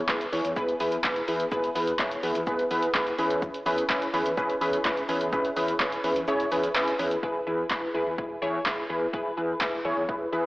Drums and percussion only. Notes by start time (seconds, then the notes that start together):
0.09 kick, snare, clap, shaker
0.21 closed hi-hat, shaker
0.33 open hi-hat, shaker
0.45 closed hi-hat, shaker
0.56 kick, shaker
0.68 closed hi-hat, shaker
0.80 open hi-hat, shaker
0.92 closed hi-hat, shaker
1.04 kick, snare, clap, shaker
1.16 closed hi-hat, shaker
1.28 open hi-hat, shaker
1.40 closed hi-hat, shaker
1.52 kick, shaker
1.64 closed hi-hat, shaker
1.76 open hi-hat, shaker
1.87 closed hi-hat, shaker
1.99 kick, snare, clap, shaker
2.11 closed hi-hat, shaker
2.23 open hi-hat, shaker
2.35 closed hi-hat, shaker
2.47 kick, shaker
2.59 closed hi-hat, shaker
2.71 open hi-hat, shaker
2.83 closed hi-hat, shaker
2.95 kick, snare, clap, shaker
3.07 closed hi-hat, shaker
3.19 open hi-hat, shaker
3.30 closed hi-hat, shaker
3.42 kick, shaker
3.54 closed hi-hat, shaker
3.66 open hi-hat, shaker
3.78 closed hi-hat, shaker
3.90 kick, snare, clap, shaker
4.02 closed hi-hat, shaker
4.14 open hi-hat, shaker
4.26 closed hi-hat, shaker
4.37 kick, shaker
4.50 closed hi-hat, shaker
4.61 open hi-hat, shaker
4.73 closed hi-hat, shaker
4.85 kick, snare, clap, shaker
4.97 closed hi-hat, shaker
5.09 open hi-hat, shaker
5.21 closed hi-hat, shaker
5.33 kick, shaker
5.45 closed hi-hat, shaker
5.57 open hi-hat, shaker
5.68 closed hi-hat, shaker
5.80 kick, snare, clap, shaker
5.92 closed hi-hat, shaker
6.04 open hi-hat, shaker
6.16 closed hi-hat, shaker
6.28 shaker
6.40 closed hi-hat, shaker
6.52 open hi-hat, shaker
6.64 closed hi-hat, shaker
6.75 snare, clap, shaker
6.88 closed hi-hat, shaker
6.99 open hi-hat, shaker
7.11 closed hi-hat, shaker
7.23 kick
7.70 kick, snare, clap
8.18 kick
8.66 kick, snare, clap
9.14 kick
9.61 kick, snare, clap
10.09 kick